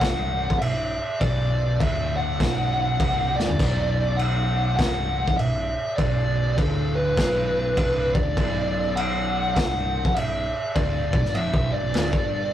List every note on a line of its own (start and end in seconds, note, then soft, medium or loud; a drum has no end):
0.00 0.47 C1 medium
0.00 0.50 C2 loud
0.00 0.58 F#5 loud
0.00 kick loud
0.00 snare loud
0.00 crash medium
0.50 0.61 F1 loud
0.50 0.61 F2 loud
0.50 kick medium
0.59 0.97 B0 medium
0.59 0.92 B1 medium
0.59 1.22 E5 loud
0.59 crash medium
1.20 1.77 B0 medium
1.20 1.80 B1 loud
1.20 1.82 D5 loud
1.20 kick loud
1.20 crash medium
1.80 2.36 D1 medium
1.80 2.39 D2 medium
1.80 2.15 E5 medium
1.80 kick loud
1.80 crash medium
2.17 3.41 F#5 loud
2.39 2.96 B0 medium
2.39 2.99 B1 loud
2.39 kick loud
2.39 snare loud
2.39 crash medium
2.99 3.35 C1 medium
2.99 3.36 C2 loud
2.99 kick loud
2.99 crash medium
3.36 3.58 D1 medium
3.36 3.59 D2 medium
3.36 4.15 D5 medium
3.36 snare medium
3.49 floor tom medium
3.59 4.75 B0 medium
3.59 4.78 B1 loud
3.59 kick loud
3.59 splash medium
3.59 crash medium
4.17 4.75 F#5 medium
4.17 crash medium
4.77 5.24 C1 loud
4.77 5.27 C2 loud
4.77 5.37 F#5 medium
4.77 kick loud
4.77 snare loud
4.77 crash medium
5.28 5.38 F1 loud
5.28 5.38 F2 loud
5.28 kick loud
5.37 5.74 B0 medium
5.37 5.69 B1 medium
5.37 5.94 E5 loud
5.37 crash medium
5.96 6.54 B0 medium
5.96 6.58 B1 loud
5.96 6.59 D5 medium
5.96 kick loud
5.96 crash medium
6.57 7.14 D1 loud
6.57 7.17 D2 medium
6.57 6.97 A4 medium
6.57 kick loud
6.57 crash medium
6.95 8.15 B4 loud
7.17 7.73 B0 medium
7.17 7.77 B1 loud
7.17 kick loud
7.17 snare loud
7.17 crash medium
7.77 8.12 C1 medium
7.77 8.15 C2 loud
7.77 kick loud
7.77 crash medium
8.15 8.36 D1 loud
8.15 8.37 D2 medium
8.15 8.93 D5 medium
8.15 kick loud
8.37 9.52 B0 loud
8.37 9.56 B1 loud
8.37 kick loud
8.37 crash medium
8.96 9.52 F#5 medium
8.96 crash medium
9.55 10.02 C1 medium
9.55 10.05 C2 medium
9.55 10.15 F#5 loud
9.55 kick loud
9.55 snare loud
9.55 crash medium
10.05 10.15 F1 loud
10.05 10.16 F2 medium
10.05 kick medium
10.15 10.51 B0 medium
10.15 10.47 B1 medium
10.15 10.77 E5 medium
10.15 crash medium
10.75 11.11 D1 medium
10.75 11.12 D2 loud
10.75 11.37 D5 medium
10.75 kick loud
10.75 crash medium
11.13 11.23 B0 loud
11.13 11.24 B1 loud
11.13 kick loud
11.24 11.34 G1 medium
11.24 11.35 G2 medium
11.24 snare soft
11.34 11.53 F1 medium
11.34 11.53 F2 medium
11.34 11.73 E5 medium
11.34 crash medium
11.54 11.71 B0 medium
11.54 11.71 B1 medium
11.54 kick loud
11.72 11.82 G1 medium
11.72 11.83 G2 loud
11.72 12.53 D5 medium
11.83 11.93 B0 medium
11.83 11.94 B1 loud
11.94 12.12 D1 medium
11.94 12.12 D2 medium
11.94 snare loud
11.94 crash medium
12.13 12.51 G1 medium
12.13 12.53 G2 medium
12.13 kick loud